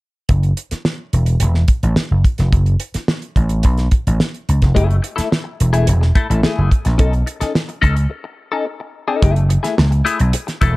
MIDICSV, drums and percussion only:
0, 0, Header, 1, 2, 480
1, 0, Start_track
1, 0, Tempo, 558659
1, 250, Time_signature, 4, 2, 24, 8
1, 9253, End_track
2, 0, Start_track
2, 0, Title_t, "Drums"
2, 248, Note_on_c, 9, 42, 78
2, 250, Note_on_c, 9, 36, 92
2, 333, Note_off_c, 9, 42, 0
2, 336, Note_off_c, 9, 36, 0
2, 371, Note_on_c, 9, 42, 31
2, 457, Note_off_c, 9, 42, 0
2, 490, Note_on_c, 9, 42, 68
2, 576, Note_off_c, 9, 42, 0
2, 611, Note_on_c, 9, 42, 53
2, 615, Note_on_c, 9, 38, 31
2, 697, Note_off_c, 9, 42, 0
2, 700, Note_off_c, 9, 38, 0
2, 730, Note_on_c, 9, 38, 97
2, 816, Note_off_c, 9, 38, 0
2, 971, Note_on_c, 9, 42, 63
2, 1057, Note_off_c, 9, 42, 0
2, 1085, Note_on_c, 9, 42, 46
2, 1171, Note_off_c, 9, 42, 0
2, 1203, Note_on_c, 9, 42, 91
2, 1289, Note_off_c, 9, 42, 0
2, 1329, Note_on_c, 9, 38, 28
2, 1415, Note_off_c, 9, 38, 0
2, 1442, Note_on_c, 9, 42, 68
2, 1447, Note_on_c, 9, 36, 87
2, 1528, Note_off_c, 9, 42, 0
2, 1532, Note_off_c, 9, 36, 0
2, 1572, Note_on_c, 9, 42, 49
2, 1658, Note_off_c, 9, 42, 0
2, 1685, Note_on_c, 9, 38, 100
2, 1771, Note_off_c, 9, 38, 0
2, 1929, Note_on_c, 9, 36, 83
2, 1931, Note_on_c, 9, 42, 57
2, 2015, Note_off_c, 9, 36, 0
2, 2017, Note_off_c, 9, 42, 0
2, 2045, Note_on_c, 9, 42, 43
2, 2052, Note_on_c, 9, 38, 30
2, 2131, Note_off_c, 9, 42, 0
2, 2138, Note_off_c, 9, 38, 0
2, 2170, Note_on_c, 9, 36, 107
2, 2170, Note_on_c, 9, 42, 74
2, 2256, Note_off_c, 9, 36, 0
2, 2256, Note_off_c, 9, 42, 0
2, 2287, Note_on_c, 9, 42, 32
2, 2373, Note_off_c, 9, 42, 0
2, 2403, Note_on_c, 9, 42, 78
2, 2489, Note_off_c, 9, 42, 0
2, 2527, Note_on_c, 9, 42, 49
2, 2531, Note_on_c, 9, 38, 31
2, 2613, Note_off_c, 9, 42, 0
2, 2617, Note_off_c, 9, 38, 0
2, 2648, Note_on_c, 9, 38, 105
2, 2734, Note_off_c, 9, 38, 0
2, 2766, Note_on_c, 9, 42, 37
2, 2852, Note_off_c, 9, 42, 0
2, 2886, Note_on_c, 9, 36, 84
2, 2888, Note_on_c, 9, 42, 59
2, 2972, Note_off_c, 9, 36, 0
2, 2974, Note_off_c, 9, 42, 0
2, 3001, Note_on_c, 9, 42, 47
2, 3087, Note_off_c, 9, 42, 0
2, 3119, Note_on_c, 9, 42, 84
2, 3134, Note_on_c, 9, 36, 89
2, 3205, Note_off_c, 9, 42, 0
2, 3220, Note_off_c, 9, 36, 0
2, 3243, Note_on_c, 9, 42, 28
2, 3248, Note_on_c, 9, 38, 29
2, 3329, Note_off_c, 9, 42, 0
2, 3334, Note_off_c, 9, 38, 0
2, 3363, Note_on_c, 9, 42, 72
2, 3366, Note_on_c, 9, 36, 92
2, 3449, Note_off_c, 9, 42, 0
2, 3452, Note_off_c, 9, 36, 0
2, 3497, Note_on_c, 9, 42, 52
2, 3582, Note_off_c, 9, 42, 0
2, 3609, Note_on_c, 9, 38, 97
2, 3695, Note_off_c, 9, 38, 0
2, 3732, Note_on_c, 9, 42, 30
2, 3818, Note_off_c, 9, 42, 0
2, 3855, Note_on_c, 9, 42, 60
2, 3941, Note_off_c, 9, 42, 0
2, 3968, Note_on_c, 9, 42, 45
2, 3973, Note_on_c, 9, 36, 78
2, 3975, Note_on_c, 9, 38, 28
2, 4054, Note_off_c, 9, 42, 0
2, 4059, Note_off_c, 9, 36, 0
2, 4061, Note_off_c, 9, 38, 0
2, 4093, Note_on_c, 9, 36, 99
2, 4094, Note_on_c, 9, 42, 83
2, 4179, Note_off_c, 9, 36, 0
2, 4180, Note_off_c, 9, 42, 0
2, 4215, Note_on_c, 9, 42, 32
2, 4301, Note_off_c, 9, 42, 0
2, 4329, Note_on_c, 9, 42, 68
2, 4415, Note_off_c, 9, 42, 0
2, 4451, Note_on_c, 9, 42, 58
2, 4454, Note_on_c, 9, 38, 35
2, 4537, Note_off_c, 9, 42, 0
2, 4540, Note_off_c, 9, 38, 0
2, 4574, Note_on_c, 9, 38, 95
2, 4660, Note_off_c, 9, 38, 0
2, 4813, Note_on_c, 9, 42, 68
2, 4899, Note_off_c, 9, 42, 0
2, 4928, Note_on_c, 9, 42, 49
2, 5014, Note_off_c, 9, 42, 0
2, 5045, Note_on_c, 9, 42, 87
2, 5131, Note_off_c, 9, 42, 0
2, 5174, Note_on_c, 9, 38, 28
2, 5260, Note_off_c, 9, 38, 0
2, 5288, Note_on_c, 9, 42, 74
2, 5289, Note_on_c, 9, 36, 89
2, 5374, Note_off_c, 9, 36, 0
2, 5374, Note_off_c, 9, 42, 0
2, 5419, Note_on_c, 9, 42, 55
2, 5505, Note_off_c, 9, 42, 0
2, 5528, Note_on_c, 9, 38, 103
2, 5614, Note_off_c, 9, 38, 0
2, 5769, Note_on_c, 9, 36, 76
2, 5771, Note_on_c, 9, 42, 54
2, 5855, Note_off_c, 9, 36, 0
2, 5857, Note_off_c, 9, 42, 0
2, 5885, Note_on_c, 9, 42, 44
2, 5891, Note_on_c, 9, 38, 25
2, 5971, Note_off_c, 9, 42, 0
2, 5977, Note_off_c, 9, 38, 0
2, 6005, Note_on_c, 9, 42, 86
2, 6009, Note_on_c, 9, 36, 99
2, 6091, Note_off_c, 9, 42, 0
2, 6095, Note_off_c, 9, 36, 0
2, 6128, Note_on_c, 9, 42, 31
2, 6213, Note_off_c, 9, 42, 0
2, 6248, Note_on_c, 9, 42, 64
2, 6334, Note_off_c, 9, 42, 0
2, 6367, Note_on_c, 9, 42, 55
2, 6370, Note_on_c, 9, 38, 31
2, 6453, Note_off_c, 9, 42, 0
2, 6456, Note_off_c, 9, 38, 0
2, 6490, Note_on_c, 9, 38, 106
2, 6576, Note_off_c, 9, 38, 0
2, 6605, Note_on_c, 9, 42, 34
2, 6691, Note_off_c, 9, 42, 0
2, 6726, Note_on_c, 9, 36, 77
2, 6731, Note_on_c, 9, 42, 60
2, 6812, Note_off_c, 9, 36, 0
2, 6817, Note_off_c, 9, 42, 0
2, 6843, Note_on_c, 9, 42, 42
2, 6929, Note_off_c, 9, 42, 0
2, 7926, Note_on_c, 9, 36, 113
2, 7926, Note_on_c, 9, 42, 85
2, 8012, Note_off_c, 9, 36, 0
2, 8012, Note_off_c, 9, 42, 0
2, 8043, Note_on_c, 9, 42, 35
2, 8129, Note_off_c, 9, 42, 0
2, 8164, Note_on_c, 9, 42, 76
2, 8250, Note_off_c, 9, 42, 0
2, 8286, Note_on_c, 9, 42, 53
2, 8290, Note_on_c, 9, 38, 36
2, 8372, Note_off_c, 9, 42, 0
2, 8376, Note_off_c, 9, 38, 0
2, 8405, Note_on_c, 9, 38, 106
2, 8491, Note_off_c, 9, 38, 0
2, 8522, Note_on_c, 9, 42, 34
2, 8608, Note_off_c, 9, 42, 0
2, 8647, Note_on_c, 9, 42, 68
2, 8733, Note_off_c, 9, 42, 0
2, 8759, Note_on_c, 9, 42, 48
2, 8845, Note_off_c, 9, 42, 0
2, 8878, Note_on_c, 9, 42, 91
2, 8964, Note_off_c, 9, 42, 0
2, 9004, Note_on_c, 9, 42, 32
2, 9008, Note_on_c, 9, 38, 30
2, 9090, Note_off_c, 9, 42, 0
2, 9094, Note_off_c, 9, 38, 0
2, 9120, Note_on_c, 9, 42, 69
2, 9122, Note_on_c, 9, 36, 97
2, 9206, Note_off_c, 9, 42, 0
2, 9208, Note_off_c, 9, 36, 0
2, 9253, End_track
0, 0, End_of_file